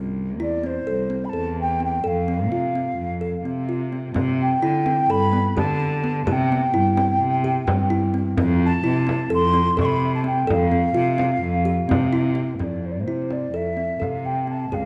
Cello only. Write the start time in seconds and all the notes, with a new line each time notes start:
Already playing: C2
0.40 E2
0.87 C2
1.34 E2
2.05 F2
2.50 C3
2.97 F2
3.45 C3
4.15 C3
4.62 D3
5.09 G2
5.57 D3
6.27 C3
6.74 G2
7.21 C3
7.69 G2
8.38 F2
8.85 C3
9.32 F2
9.80 C3
10.49 F2
10.96 C3
11.42 F2
11.89 C3
12.59 F2
13.06 C3
13.52 F2
14.00 C3
14.71 C#2